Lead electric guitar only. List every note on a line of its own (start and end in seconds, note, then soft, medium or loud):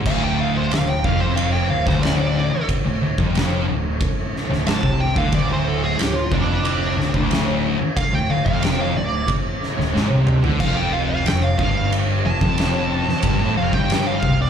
0.07 0.22 F5 loud
0.24 0.39 G5 medium
0.41 0.56 F5 medium
0.55 0.71 C5 medium
0.72 0.88 F5 loud
0.90 1.04 G5 medium
1.04 1.21 F5 medium
1.21 1.37 C5 loud
1.36 1.52 F5 medium
1.52 1.70 G5 medium
1.70 1.86 F5 medium
1.86 2.02 C5 medium
2.03 2.67 D5 loud
4.68 5.00 A5 loud
5.00 5.18 G5 medium
5.18 5.34 F5 medium
5.34 5.50 D5 loud
5.52 5.68 C5 loud
5.68 5.83 A4 medium
5.84 6.00 G#4 medium
6.00 6.15 G4 loud
6.15 6.32 F4 medium
6.33 6.64 D4 medium
6.66 7.29 D4 medium
7.97 8.13 F5 loud
8.15 8.30 G5 medium
8.30 8.45 F5 loud
8.46 8.62 F5 loud
8.63 8.79 G5 medium
8.80 8.96 F5 medium
8.96 9.28 D5 loud
10.61 10.77 F5 loud
10.77 10.93 G5 loud
10.93 11.09 F5 loud
11.10 11.26 F5 loud
11.26 11.42 G5 loud
11.42 11.57 F5 medium
11.58 11.91 F5 loud
12.26 13.54 A5 loud
13.58 13.74 F5 loud
13.74 14.06 G5 medium
14.07 14.39 F5 medium
14.42 14.50 D5 loud